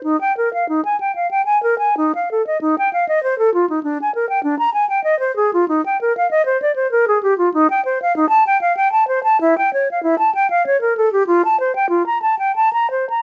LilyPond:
\new Staff \with { instrumentName = "Flute" } { \time 3/4 \key ees \major \tempo 4 = 96 ees'16 g''16 bes'16 f''16 ees'16 aes''16 g''16 f''16 g''16 aes''16 bes'16 aes''16 | ees'16 f''16 a'16 ees''16 ees'16 g''16 f''16 ees''16 c''16 a'16 f'16 ees'16 | d'16 aes''16 bes'16 g''16 d'16 bes''16 aes''16 g''16 ees''16 c''16 aes'16 f'16 | ees'16 g''16 bes'16 f''16 ees''16 c''16 d''16 c''16 bes'16 aes'16 g'16 f'16 |
\key f \mixolydian ees'16 g''16 c''16 f''16 ees'16 a''16 g''16 f''16 g''16 a''16 c''16 a''16 | e'16 g''16 cis''16 f''16 e'16 a''16 g''16 f''16 cis''16 bes'16 a'16 g'16 | f'16 a''16 c''16 g''16 f'16 bes''16 a''16 g''16 a''16 bes''16 c''16 bes''16 | }